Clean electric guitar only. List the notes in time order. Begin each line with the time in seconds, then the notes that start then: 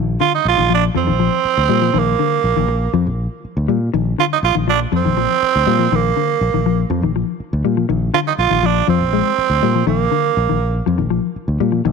Already playing: D#3
0.20 D3
0.58 D#3
0.70 F3
0.95 F3
1.07 D#3
1.20 F3
1.69 G3
1.82 F3
1.94 D#3
2.19 D3
2.56 D#3
2.69 muted clean electric guitar stroke
2.94 F3
3.68 G3
3.94 D#3
4.18 D3
4.55 D#3
4.68 F3
4.92 F3
5.05 D#3
5.17 F3
5.67 G3
5.79 F3
5.92 D#3
6.17 D3
6.54 D#3
6.66 F3
6.91 F3
7.03 D#3
7.16 F3
7.65 G3
7.77 F3
7.89 D#3
8.14 D3
8.50 D#3
8.63 F3
8.88 F3
9.13 G#3
9.63 G3
9.75 F3
9.87 D#3
10.11 D3
10.49 D#3
10.86 F3
10.98 D#3
11.10 F3
11.60 G3
11.72 F3
11.85 D#3